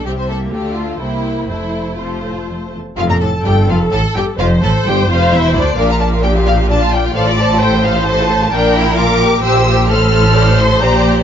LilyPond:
<<
  \new Staff \with { instrumentName = "Violin section" } { \time 3/4 \key f \major \tempo 4 = 130 e''4 f''4 g''4 | a''4 a''4. r8 | f''16 bes''16 a''8 g''8 f''8 a''8 g''8 | f''8 a''8 g''8 f''8 e''8 d''8 |
f''16 bes''16 a''8 g''8 f''8 a''8 g''8 | f''8 a''8 g''8 f''8 a''4 | g''4 d'''4 e'''4 | f'''4. c'''8 bes''8 r8 | }
  \new Staff \with { instrumentName = "Viola section" } { \time 3/4 \key f \major << { g'4 a'4 c''4 | c''4 c''4. r8 | a'2. | c''2. |
bes'4 g'4 f'4 | d''4 c''2 | bes'4 bes'4 g'4 | a'4 c''2 | } \\ { c'8 bes8 a4 bes4 | a4 a4. r8 | r2. | r2. |
r2. | r2. | r2. | r2. | } >> }
  \new Staff \with { instrumentName = "Violin section" } { \time 3/4 \key f \major << { g'16 c''16 a'8 g'8 f'8 e'4 | e'4 f'4. r8 | f'16 bes'16 a'8 g'8 f'8 a'8 g'8 | f'8 a'8 g'8 f'8 e'8 d'8 |
d''16 f''16 d''16 f''16 d''16 f''16 d''16 f''16 d''16 f''16 d''16 f''16 | c''16 a'16 c''16 a'16 c''16 a'16 c''16 a'16 c''16 a'16 c''16 a'16 | bes'2 c''4 | c''4 d''8 c''8 d''4 | } \\ { r2. | r2. | r2. | r2. |
d'16 f'16 d'16 f'16 d'16 f'16 d'16 f'16 d'16 f'16 d'16 f'16 | a'16 f'16 a'16 f'16 a'16 f'16 a'16 f'16 a'16 f'16 a'16 f'16 | d'8 e'8 f'8 g'8 g'8 g'8 | a'8 a'4. g'4 | } >> }
  \new Staff \with { instrumentName = "Cello section" } { \clef bass \time 3/4 \key f \major c4 d4 c4 | f,4 c8 a,8 f,8 e,8 | f,16 bes,16 a,8 g,8 f,8 a,8 g,8 | f,8 a,8 g,8 f,8 e,8 d,8 |
bes,2. | a,2. | bes,2 bes,4 | a,2 bes,4 | }
  \new Staff \with { instrumentName = "Double bass section" } { \clef bass \time 3/4 \key f \major c,4 d,4 c,4 | f,,2~ f,,8 r8 | f,,16 r16 a,,8 g,,8 f,,8 a,,8 g,,8 | f,,8 a,,8 g,,8 f,,8 e,,8 d,8 |
bes,,2. | a,,2. | bes,,2 bes,,4 | a,,2 bes,,4 | }
>>